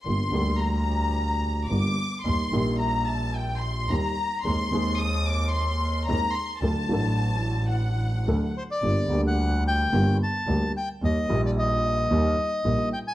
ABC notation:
X:1
M:4/4
L:1/16
Q:1/4=110
K:Gm
V:1 name="Violin section"
c'4 b8 d'4 | c'4 b2 a2 g2 c'2 b4 | c'4 e'2 d'2 c'4 b2 c'2 | a8 ^f6 z2 |
z16 | z16 |]
V:2 name="Bandoneon"
z16 | z16 | z16 | z12 z2 c d- |
d3 ^f3 g4 a4 g2 | e3 d e8- e2 g _a |]
V:3 name="Upright piano" clef=bass
[G,,,G,,D,G,B,G]2 [D,,D,G,B,G]8- [D,,D,G,B,G]2 [G,,,G,,D,G,B,G]2 z2 | [E,,E,G,B,G]2 [B,,,B,,E,G,B,G]8- [B,,,B,,E,G,B,G]2 [E,,E,G,B,G]2 z2 | [E,,E,_A,C_A]2 [E,,E,A,CA]8- [E,,E,A,CA]2 [E,,E,A,CA]2 z2 | [D,,D,^F,A,DA]2 [A,,,A,,F,A,DA]8- [A,,,A,,F,A,DA]2 [D,,D,F,A,DA]2 z2 |
[G,,,G,,D,G,B,G]2 [D,,D,G,B,G]6 [G,,,G,,D,G,B,G]2 z2 [D,,D,G,B,G]2 z2 | [E,,E,G,B,G]2 [B,,,B,,E,G,B,G]6 [E,,E,G,B,G]2 z2 [B,,,B,,E,G,B,G]2 z2 |]
V:4 name="Double bass" clef=bass
G,,,2 D,,8- D,,2 G,,,2 z2 | E,,2 B,,,8- B,,,2 E,,2 z2 | E,,2 E,,8- E,,2 E,,2 z2 | D,,2 A,,,8- A,,,2 D,,2 z2 |
G,,,2 D,,6 G,,,2 z2 D,,2 z2 | E,,2 B,,,6 E,,2 z2 B,,,2 z2 |]